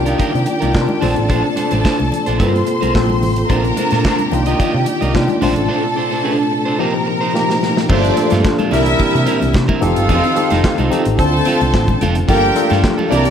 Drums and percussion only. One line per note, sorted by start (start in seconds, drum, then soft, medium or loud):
0.06 closed hi-hat medium
0.20 kick loud
0.20 closed hi-hat medium
0.20 muted conga soft
0.35 closed hi-hat soft
0.46 closed hi-hat medium
0.46 muted conga soft
0.62 closed hi-hat soft
0.62 high conga medium
0.73 kick loud
0.73 snare loud
0.73 clap medium
0.73 muted conga soft
0.89 high conga medium
1.02 open hi-hat medium
1.02 high conga medium
1.02 low conga medium
1.16 closed hi-hat soft
1.30 kick loud
1.30 closed hi-hat medium
1.57 closed hi-hat medium
1.57 muted conga soft
1.57 high conga medium
1.71 closed hi-hat soft
1.71 high conga medium
1.85 kick loud
1.85 snare loud
1.85 clap loud
1.85 muted conga soft
2.00 high conga medium
2.12 closed hi-hat medium
2.12 muted conga soft
2.12 low conga medium
2.26 closed hi-hat medium
2.40 kick loud
2.40 closed hi-hat medium
2.56 closed hi-hat soft
2.67 closed hi-hat medium
2.67 muted conga soft
2.82 closed hi-hat soft
2.82 high conga medium
2.95 kick loud
2.95 snare medium
2.95 clap medium
3.10 high conga medium
3.23 open hi-hat medium
3.23 high conga medium
3.23 low conga medium
3.36 closed hi-hat medium
3.50 kick loud
3.50 closed hi-hat medium
3.50 muted conga soft
3.64 closed hi-hat soft
3.77 closed hi-hat medium
3.77 muted conga soft
3.77 high conga medium
3.91 snare soft
3.91 closed hi-hat soft
3.91 high conga medium
4.05 kick loud
4.05 snare loud
4.05 clap loud
4.05 muted conga soft
4.19 closed hi-hat soft
4.19 high conga medium
4.32 closed hi-hat medium
4.32 muted conga soft
4.32 low conga medium
4.46 closed hi-hat medium
4.60 kick loud
4.60 closed hi-hat medium
4.86 closed hi-hat medium
4.86 muted conga soft
5.01 closed hi-hat soft
5.01 high conga medium
5.15 kick loud
5.15 snare loud
5.15 clap medium
5.28 closed hi-hat soft
5.28 high conga medium
5.42 open hi-hat medium
5.42 muted conga soft
5.42 high conga medium
5.42 low conga medium
5.56 closed hi-hat medium
7.35 snare medium
7.50 snare medium
7.63 snare medium
7.77 snare medium
7.90 kick loud
7.90 crash loud
7.90 low conga medium
8.04 closed hi-hat soft
8.17 closed hi-hat medium
8.17 muted conga soft
8.30 snare soft
8.30 closed hi-hat soft
8.30 high conga medium
8.45 kick loud
8.45 snare loud
8.45 clap loud
8.45 muted conga soft
8.58 closed hi-hat soft
8.58 high conga medium
8.71 closed hi-hat medium
8.71 low conga medium
8.86 closed hi-hat medium
8.99 kick loud
8.99 closed hi-hat medium
8.99 muted conga soft
9.16 closed hi-hat soft
9.27 closed hi-hat medium
9.27 muted conga soft
9.41 closed hi-hat soft
9.41 high conga medium
9.54 kick loud
9.54 snare loud
9.54 clap medium
9.54 muted conga soft
9.69 kick loud
9.69 high conga medium
9.82 closed hi-hat medium
9.82 high conga medium
9.82 low conga medium
9.96 closed hi-hat medium
10.09 kick loud
10.09 closed hi-hat medium
10.09 low conga medium
10.24 closed hi-hat soft
10.36 closed hi-hat medium
10.36 muted conga soft
10.50 snare soft
10.50 closed hi-hat soft
10.50 high conga medium
10.64 kick loud
10.64 snare loud
10.64 clap loud
10.78 closed hi-hat soft
10.78 high conga medium
10.92 closed hi-hat medium
10.92 muted conga soft
10.92 low conga medium
11.05 closed hi-hat medium
11.19 kick loud
11.19 closed hi-hat medium
11.45 closed hi-hat medium
11.45 muted conga soft
11.61 closed hi-hat soft
11.61 high conga medium
11.74 kick loud
11.74 snare loud
11.74 clap medium
11.88 kick loud
11.88 closed hi-hat soft
11.88 high conga medium
12.01 closed hi-hat medium
12.01 muted conga soft
12.01 high conga medium
12.01 low conga medium
12.15 closed hi-hat medium
12.29 kick loud
12.29 closed hi-hat medium
12.29 low conga medium
12.56 closed hi-hat medium
12.70 snare soft
12.70 closed hi-hat soft
12.70 high conga medium
12.84 kick loud
12.84 snare loud
12.84 clap medium
12.99 high conga medium
13.12 closed hi-hat medium
13.12 low conga medium
13.25 closed hi-hat medium